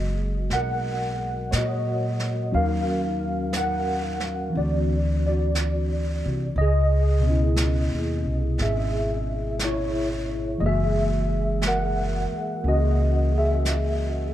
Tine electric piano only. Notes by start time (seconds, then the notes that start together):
Already playing: F#3 G#3 A#3 F#4 G#4 D#5
0.53 A#4 F#5
1.51 C#5
1.55 F#4 D#5
2.52 F#3 C#4 D#4 F#4 F5
2.57 A#4
3.57 A#4 F#5
4.50 E3 C4
4.57 D4 F#4 D5
5.27 F#4 D5
6.58 G#4 D#5
7.19 B2 B3
7.27 C#4 E4
8.62 G#4 E5
9.64 E4 C#5
10.58 E3 G#3 A#3 D#5
10.62 F#4 G#4 E5
11.67 A#4 F#5
12.63 A#3 C#4 G#4
12.68 F#4 D#5
13.38 G#4 E5